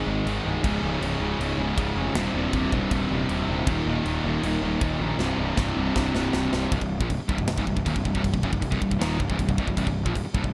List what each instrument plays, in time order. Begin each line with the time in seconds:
Already playing: distorted electric guitar G#2 D#3 G#3
0.06 picked electric bass G#1, distorted electric guitar G#2 D#3 G#3
0.26 picked electric bass G#1, distorted electric guitar G#2 D#3 G#3, crash
0.45 picked electric bass C1, distorted electric guitar G#2 D#3 G#3
0.64 picked electric bass C#1, distorted electric guitar C#2 G#2 C#3, kick, crash
0.83 picked electric bass C#1, distorted electric guitar C#2 G#2 C#3
1.00 picked electric bass C#1, distorted electric guitar C#2 G#2 C#3, crash
1.20 picked electric bass C#1, distorted electric guitar C#2 G#2 C#3
1.39 picked electric bass C#1, distorted electric guitar C#2 G#2 C#3, crash
1.58 picked electric bass C#1, distorted electric guitar C#2 G#2 C#3
1.76 picked electric bass C#1, distorted electric guitar C#2 G#2 C#3, kick, crash
1.95 picked electric bass F1, distorted electric guitar C#2 G#2 C#3
2.15 picked electric bass D#1, distorted electric guitar C2 G2 C3, snare, crash
2.34 picked electric bass D#1, distorted electric guitar C2 G2 C3
2.53 picked electric bass D#1, distorted electric guitar C2 G2 C3, kick, crash
2.72 picked electric bass D#1, distorted electric guitar C2 G2 C3, kick
2.91 picked electric bass D#1, distorted electric guitar C2 G2 C3, kick, crash
3.09 picked electric bass D#1, distorted electric guitar C2 G2 C3
3.29 picked electric bass D#1, distorted electric guitar C2 G2 C3, crash
3.48 picked electric bass D#1, distorted electric guitar C2 G2 C3
3.67 picked electric bass D#1, distorted electric guitar D#2 A#2 D#3, kick, crash
3.86 picked electric bass D#1, distorted electric guitar D#2 A#2 D#3
4.04 picked electric bass D#1, distorted electric guitar D#2 A#2 D#3, crash
4.24 picked electric bass D#1, distorted electric guitar D#2 A#2 D#3
4.42 picked electric bass D#1, distorted electric guitar D#2 A#2 D#3, crash
4.62 picked electric bass D#1, distorted electric guitar D#2 A#2 D#3
4.80 picked electric bass D#1, distorted electric guitar D#2 A#2 D#3, kick, crash
4.98 picked electric bass A#1, distorted electric guitar D#2 A#2 D#3
5.17 picked electric bass C1, distorted electric guitar C2 G2 C3, snare
5.37 picked electric bass C1, distorted electric guitar C2 G2 C3
5.56 picked electric bass C1, distorted electric guitar C2 G2 C3, kick, snare
5.75 picked electric bass C1, distorted electric guitar C2 G2 C3
5.95 picked electric bass C1, distorted electric guitar C2 G2 C3, kick, snare
6.13 picked electric bass C1, distorted electric guitar C2 G2 C3, snare
6.33 picked electric bass C1, distorted electric guitar C2 G2 C3, snare
6.52 picked electric bass C1, distorted electric guitar C2 G2 C3, snare
6.71 picked electric bass C1, distorted electric guitar C2 G2, kick, crash
6.80 picked electric bass C1, distorted electric guitar C2 G2, kick
7.00 picked electric bass A#1, distorted electric guitar A#2 F3, kick
7.10 picked electric bass C1, distorted electric guitar C2 G2, kick, crash
7.19 muted distorted electric guitar stroke, muted picked electric bass stroke
7.29 picked electric bass C1, distorted electric guitar C2 G2, kick
7.38 picked electric bass C1, distorted electric guitar C2 G2, kick
7.48 picked electric bass C1, distorted electric guitar C2 G2, snare, crash
7.57 picked electric bass C#1, distorted electric guitar C#2 G#2, kick
7.66 picked electric bass C1, distorted electric guitar C2 G2, kick
7.76 picked electric bass C1, distorted electric guitar C2 G2, kick
7.86 picked electric bass D#1, distorted electric guitar D#2 A#2, kick, crash
7.95 picked electric bass C1, distorted electric guitar C2 G2, kick
8.05 picked electric bass C1, distorted electric guitar C2 G2, kick
8.13 picked electric bass C1, distorted electric guitar C2 G2, kick
8.23 picked electric bass C1, distorted electric guitar C2 G2, kick, crash
8.33 picked electric bass C1, distorted electric guitar C2 G2, kick
8.42 picked electric bass F#1, distorted electric guitar F#2 C#3, kick
8.52 picked electric bass C1, distorted electric guitar C2 G2, kick
8.61 picked electric bass C1, distorted electric guitar C2 G2, kick, crash
8.71 picked electric bass C1, distorted electric guitar C2 G2, kick
8.80 picked electric bass C1, distorted electric guitar C2 G2, kick
8.88 picked electric bass C1, distorted electric guitar C2 G2, kick
8.98 picked electric bass D#1, distorted electric guitar D#2 A#2 D#3, snare, crash
9.18 picked electric bass C1, distorted electric guitar C2 G2, kick
9.27 picked electric bass C#1, distorted electric guitar C#2 G#2, kick
9.38 picked electric bass C1, distorted electric guitar C2 G2, kick, crash
9.46 picked electric bass C1, distorted electric guitar C2 G2, kick
9.57 picked electric bass C1, distorted electric guitar C2 G2, kick
9.67 picked electric bass C1, distorted electric guitar C2 G2, kick
9.76 picked electric bass C1, distorted electric guitar C2 G2, kick, crash
9.86 picked electric bass C1, distorted electric guitar C2 G2, kick
10.05 picked electric bass A#1, distorted electric guitar A#2 F3, kick
10.14 picked electric bass C1, distorted electric guitar C2 G2, kick, crash
10.24 muted distorted electric guitar stroke, muted picked electric bass stroke
10.33 picked electric bass C1, distorted electric guitar C2 G2, kick
10.43 picked electric bass C1, distorted electric guitar C2 G2, kick